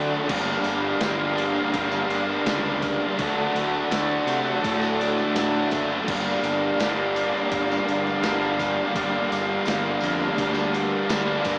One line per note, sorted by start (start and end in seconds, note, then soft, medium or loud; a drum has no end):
0.00 0.21 D3 medium
0.00 0.27 D3 medium
0.00 0.27 F#3 medium
0.00 0.27 A3 medium
0.00 0.30 D4 medium
0.00 6.03 D4 medium
0.00 0.26 F#4 medium
0.00 0.26 A4 medium
0.00 0.26 F#5 medium
0.12 tambourine soft
0.28 0.57 G1 medium
0.28 1.38 G2 loud
0.28 1.00 D3 loud
0.28 1.01 G3 loud
0.28 1.02 A#3 loud
0.28 1.03 D4 loud
0.28 3.17 G4 medium
0.28 3.17 A#4 medium
0.28 3.17 F5 medium
0.28 kick loud
0.28 crash loud
0.28 tambourine soft
0.64 0.93 G1 medium
0.64 open hi-hat medium
0.64 tambourine medium
1.00 1.57 G1 medium
1.00 1.72 G2 medium
1.00 1.72 D3 medium
1.00 1.73 G3 medium
1.00 1.72 A#3 medium
1.00 1.74 D4 medium
1.00 snare loud
1.00 open hi-hat medium
1.00 tambourine loud
1.36 2.44 D3 medium
1.36 2.45 G3 medium
1.36 2.44 A#3 medium
1.36 2.48 D4 medium
1.36 open hi-hat medium
1.40 2.44 G2 medium
1.56 tambourine soft
1.72 2.02 G1 medium
1.72 2.46 G2 medium
1.72 2.44 D3 medium
1.72 2.10 G3 medium
1.72 2.09 A#3 loud
1.72 2.08 D4 loud
1.72 kick loud
1.72 open hi-hat medium
1.72 tambourine soft
1.92 tambourine medium
2.09 2.37 G1 medium
2.09 2.45 G3 medium
2.09 2.45 A#3 medium
2.09 2.46 D4 medium
2.09 open hi-hat medium
2.09 tambourine soft
2.30 tambourine soft
2.45 3.01 C#2 medium
2.45 3.16 G2 medium
2.45 3.17 G2 medium
2.45 3.16 D3 medium
2.45 3.16 G3 medium
2.45 3.16 A#3 medium
2.45 3.19 D4 medium
2.45 snare loud
2.45 open hi-hat medium
2.45 tambourine loud
2.65 tambourine soft
2.82 kick medium
2.82 open hi-hat medium
2.82 tambourine medium
3.18 3.47 D2 medium
3.18 3.89 D3 loud
3.18 3.90 F#3 loud
3.18 3.90 A3 loud
3.18 3.92 D4 loud
3.18 5.91 F#4 medium
3.18 5.91 A4 medium
3.18 5.91 F#5 medium
3.18 kick loud
3.18 open hi-hat medium
3.18 tambourine soft
3.55 3.82 D2 medium
3.55 open hi-hat medium
3.91 4.19 D2 medium
3.91 4.62 D3 medium
3.91 4.63 F#3 medium
3.91 4.63 A3 medium
3.91 4.65 D4 medium
3.91 snare loud
3.91 open hi-hat medium
3.91 tambourine loud
4.26 4.54 C3 medium
4.26 5.34 D3 medium
4.26 5.34 F#3 medium
4.26 5.33 A3 medium
4.26 5.38 D4 medium
4.26 open hi-hat medium
4.26 tambourine medium
4.45 tambourine soft
4.63 5.19 A2 loud
4.63 5.34 D3 medium
4.63 5.02 F#3 medium
4.63 5.01 A3 loud
4.63 5.01 D4 loud
4.63 kick loud
4.63 open hi-hat medium
4.63 tambourine soft
4.81 tambourine medium
5.01 5.36 F#3 medium
5.01 5.36 A3 medium
5.01 5.37 D4 medium
5.01 open hi-hat medium
5.17 snare soft
5.17 tambourine soft
5.35 5.63 A2 medium
5.35 6.05 D3 medium
5.35 6.06 F#3 medium
5.35 6.06 A3 medium
5.35 6.09 D4 medium
5.35 snare loud
5.35 open hi-hat medium
5.35 tambourine loud
5.54 tambourine soft
5.71 6.00 F#1 loud
5.71 kick medium
5.71 open hi-hat medium
5.71 tambourine medium
6.07 6.35 G1 loud
6.07 7.51 G2 medium
6.07 6.78 D3 loud
6.07 6.80 G3 loud
6.07 6.81 A#3 loud
6.07 8.93 D4 medium
6.07 6.81 D4 loud
6.07 11.59 G4 medium
6.07 8.92 A#4 medium
6.07 11.59 F5 medium
6.07 kick loud
6.07 crash loud
6.07 tambourine soft
6.43 6.71 G1 medium
6.43 open hi-hat medium
6.43 tambourine medium
6.79 7.34 G1 medium
6.79 7.50 G2 medium
6.79 7.51 D3 medium
6.79 7.52 G3 medium
6.79 7.52 A#3 medium
6.79 7.53 D4 medium
6.79 snare loud
6.79 open hi-hat medium
6.79 tambourine medium
7.14 8.21 G2 medium
7.14 8.21 D3 medium
7.14 8.23 G3 medium
7.14 8.24 A#3 medium
7.14 8.25 D4 medium
7.14 open hi-hat medium
7.14 tambourine medium
7.34 tambourine soft
7.51 7.79 G1 loud
7.51 8.94 G2 medium
7.51 8.20 D3 loud
7.51 7.87 G3 medium
7.51 7.87 A#3 loud
7.51 7.86 D4 loud
7.51 kick loud
7.51 open hi-hat medium
7.51 tambourine soft
7.71 tambourine medium
7.87 8.15 G1 medium
7.87 8.22 G3 medium
7.87 8.22 A#3 medium
7.87 8.23 D4 medium
7.87 open hi-hat medium
7.87 tambourine soft
8.07 snare soft
8.07 tambourine soft
8.21 8.79 G1 medium
8.21 8.93 G2 medium
8.21 8.94 G2 medium
8.21 8.92 D3 medium
8.21 8.95 G3 medium
8.21 8.96 A#3 medium
8.21 8.96 D4 medium
8.21 snare loud
8.21 open hi-hat medium
8.21 tambourine loud
8.26 8.97 G3 medium
8.43 tambourine soft
8.60 kick medium
8.60 open hi-hat medium
8.60 tambourine medium
8.95 9.23 G1 medium
8.95 10.02 G2 loud
8.95 9.65 D3 loud
8.95 9.66 G3 loud
8.95 9.66 A#3 loud
8.95 9.68 D4 loud
8.95 11.59 D4 medium
8.95 11.59 A#4 medium
8.95 kick loud
8.95 open hi-hat medium
8.95 tambourine soft
9.32 9.59 G1 medium
9.32 open hi-hat medium
9.32 tambourine medium
9.66 9.94 G1 loud
9.66 10.36 G2 medium
9.66 10.37 D3 medium
9.66 10.38 G3 medium
9.66 10.38 A#3 medium
9.66 10.39 D4 medium
9.66 snare loud
9.66 open hi-hat medium
9.66 tambourine loud
10.00 10.29 F2 medium
10.00 11.08 D3 medium
10.00 11.08 G3 medium
10.00 11.08 A#3 medium
10.00 11.07 D4 medium
10.00 open hi-hat medium
10.00 tambourine medium
10.06 11.06 G2 medium
10.19 tambourine soft
10.37 10.92 D2 medium
10.37 11.09 G2 medium
10.37 11.08 D3 medium
10.37 10.75 G3 loud
10.37 10.74 A#3 loud
10.37 10.73 D4 medium
10.37 kick loud
10.37 open hi-hat medium
10.37 tambourine soft
10.54 tambourine medium
10.74 11.09 G3 medium
10.74 11.10 A#3 medium
10.74 11.10 D4 medium
10.74 open hi-hat medium
11.07 11.36 D2 medium
11.07 11.59 G2 medium
11.07 11.59 D3 medium
11.07 11.59 G3 medium
11.07 snare loud
11.07 open hi-hat medium
11.07 tambourine loud
11.11 11.59 A#3 medium
11.11 11.59 D4 medium
11.45 11.59 G2 loud
11.45 kick medium
11.45 snare soft
11.45 open hi-hat medium
11.45 tambourine medium